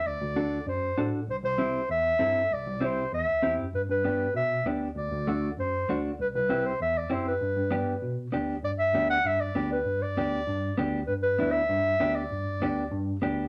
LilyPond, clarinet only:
\new Staff \with { instrumentName = "Clarinet" } { \time 4/4 \key g \major \tempo 4 = 196 d''2 c''4. r8 | c''8 c''4. e''2 | d''4 c''4 e''4. r8 | b'8 b'4. e''4 r4 |
d''2 c''4. r8 | b'8 b'4 c''8 e''8 d''8 c''8 b'8~ | b'2. r4 | d''8 e''4 fis''8 e''8 d''4 b'8~ |
b'8 d''2. r8 | b'8 b'4 e''2 d''8~ | d''2~ d''8 r4. | }